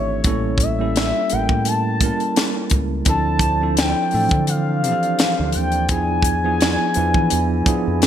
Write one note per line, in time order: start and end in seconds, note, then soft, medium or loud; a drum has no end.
0.00 0.21 G#1 medium
0.00 0.26 E3 medium
0.00 0.26 A3 medium
0.00 0.27 C4 medium
0.00 0.27 D4 medium
0.00 0.19 E4 medium
0.00 0.26 A4 medium
0.00 0.61 C#5 medium
0.24 1.11 A1 loud
0.24 0.76 G3 medium
0.24 0.76 A#3 medium
0.24 0.76 C#4 medium
0.24 0.77 E4 medium
0.24 0.77 A4 medium
0.24 kick medium
0.24 closed hi-hat medium
0.58 kick medium
0.58 closed hi-hat medium
0.63 1.34 E5 medium
0.79 1.27 G3 medium
0.79 1.28 A#3 medium
0.79 1.28 C#4 medium
0.79 1.28 E4 medium
0.79 1.28 A4 medium
0.96 snare loud
0.96 closed hi-hat medium
1.30 1.48 A1 medium
1.30 1.97 G3 medium
1.30 1.97 A#3 medium
1.30 1.98 C#4 medium
1.30 1.98 E4 medium
1.30 1.98 A#4 medium
1.30 1.69 G5 medium
1.30 closed hi-hat medium
1.49 2.10 A2 medium
1.49 kick medium
1.65 2.72 A5 medium
1.65 closed hi-hat medium
2.01 3.01 G3 medium
2.01 3.02 A#3 medium
2.01 3.02 C#4 medium
2.01 3.02 E4 medium
2.01 3.02 A#4 medium
2.01 kick medium
2.01 closed hi-hat medium
2.20 closed hi-hat soft
2.36 snare loud
2.36 closed hi-hat medium
2.70 3.02 C#2 medium
2.70 kick medium
2.70 closed hi-hat medium
3.05 3.93 D2 medium
3.05 3.58 F3 medium
3.05 3.58 C4 medium
3.05 5.87 D4 medium
3.05 3.58 D4 medium
3.05 3.59 E4 medium
3.05 3.59 A4 medium
3.05 5.86 C5 medium
3.05 5.87 D5 medium
3.05 3.74 A5 loud
3.05 kick loud
3.05 closed hi-hat medium
3.39 kick medium
3.39 closed hi-hat medium
3.61 4.10 F3 medium
3.61 4.10 C4 medium
3.61 4.10 D4 medium
3.61 4.11 E4 medium
3.61 4.11 A4 medium
3.77 4.45 G5 loud
3.77 snare loud
3.77 closed hi-hat medium
4.11 4.30 A2 medium
4.11 4.80 E3 medium
4.11 4.79 F3 medium
4.11 4.79 C4 medium
4.11 4.80 D4 medium
4.11 4.80 A4 medium
4.11 open hi-hat soft
4.29 4.92 D3 medium
4.29 kick medium
4.29 closed hi-hat soft
4.47 5.50 F5 loud
4.47 closed hi-hat medium
4.83 5.84 E3 medium
4.83 5.83 F3 medium
4.83 5.84 C4 medium
4.83 5.84 D4 medium
4.83 4.91 G4 medium
4.83 closed hi-hat medium
4.92 5.88 A4 medium
5.03 closed hi-hat soft
5.19 snare loud
5.19 closed hi-hat medium
5.40 5.52 D2 loud
5.52 5.90 D#2 medium
5.52 5.90 G5 loud
5.52 closed hi-hat medium
5.72 closed hi-hat soft
5.89 6.76 E2 loud
5.89 6.40 F3 medium
5.89 6.40 B3 medium
5.89 6.41 D4 medium
5.89 8.07 E4 medium
5.89 6.41 E4 medium
5.89 6.41 G#4 medium
5.89 8.07 D5 medium
5.89 8.01 G#5 loud
5.89 8.07 G#5 medium
5.89 kick loud
5.89 closed hi-hat medium
6.22 kick medium
6.22 closed hi-hat medium
6.44 6.92 F3 medium
6.44 6.92 B3 medium
6.44 6.93 D4 medium
6.44 6.93 E4 medium
6.44 6.93 G#4 medium
6.61 snare loud
6.61 closed hi-hat medium
6.94 7.12 E2 medium
6.94 7.62 F3 medium
6.94 7.62 B3 medium
6.94 7.62 D4 medium
6.94 7.63 E4 medium
6.94 7.63 B4 medium
6.94 closed hi-hat medium
7.14 7.29 E3 medium
7.14 kick medium
7.30 7.61 E2 medium
7.30 closed hi-hat medium
7.66 8.07 F3 medium
7.66 8.07 B3 medium
7.66 8.07 D4 medium
7.66 8.07 E4 medium
7.66 8.07 G#4 loud
7.66 muted fingered electric bass stroke soft
7.66 kick loud
7.66 closed hi-hat medium
7.88 8.07 F2 medium
8.02 snare loud
8.02 closed hi-hat medium